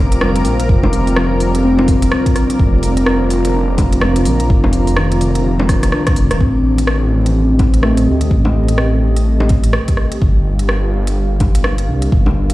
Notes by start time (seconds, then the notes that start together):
Already playing: F1 D3 C4 F4 A#4 A#5 D6
0.12 closed hi-hat
0.21 G3, cross-stick, low bongo
0.36 closed hi-hat
0.45 A#1, open hi-hat
0.60 closed hi-hat
0.69 F1, kick
0.83 low bongo
0.93 F1, open hi-hat
1.07 open hi-hat
1.16 F3, cross-stick
1.40 open hi-hat
1.55 closed hi-hat
1.64 C4
1.79 low bongo
1.88 kick, open hi-hat
2.02 closed hi-hat
2.12 cross-stick
2.26 kick, closed hi-hat
2.36 cross-stick, open hi-hat
2.50 closed hi-hat
2.59 F1, kick
2.83 open hi-hat
2.97 closed hi-hat
3.06 cross-stick
3.30 open hi-hat
3.45 closed hi-hat
3.55 D4
3.78 kick, open hi-hat, low bongo
3.92 closed hi-hat
4.01 cross-stick, low bongo
4.16 closed hi-hat
4.25 A#1, open hi-hat
4.40 closed hi-hat
4.50 F1, kick
4.64 low bongo
4.73 F1, open hi-hat
4.87 open hi-hat
4.97 D#3, cross-stick
5.12 closed hi-hat
5.21 open hi-hat
5.35 closed hi-hat
5.59 low bongo
5.69 kick, cross-stick, open hi-hat
5.83 cross-stick, closed hi-hat
5.92 D4, cross-stick
6.07 kick, cross-stick, closed hi-hat
6.16 F1, open hi-hat
6.31 D#1, cross-stick, closed hi-hat
6.40 A1 C4 G4 A4 D#5, kick
6.78 closed hi-hat
6.87 cross-stick
7.26 closed hi-hat
7.59 kick, closed hi-hat, low bongo
7.74 closed hi-hat
7.83 A3, cross-stick, low bongo
7.97 closed hi-hat
8.07 D2
8.21 closed hi-hat
8.31 A1, kick
8.45 low bongo
8.55 A1
8.68 closed hi-hat
8.78 cross-stick
9.16 closed hi-hat
9.40 low bongo
9.49 kick, closed hi-hat
9.64 closed hi-hat
9.73 cross-stick
9.88 kick, closed hi-hat
9.97 cross-stick
10.12 closed hi-hat
10.20 G1 D4 A#4 F5, kick
10.59 closed hi-hat
10.69 cross-stick
11.07 closed hi-hat
11.40 kick, closed hi-hat, low bongo
11.55 closed hi-hat
11.64 cross-stick, low bongo
11.78 closed hi-hat
11.88 C2
12.02 closed hi-hat
12.12 G1, kick
12.26 low bongo
12.36 G1
12.50 closed hi-hat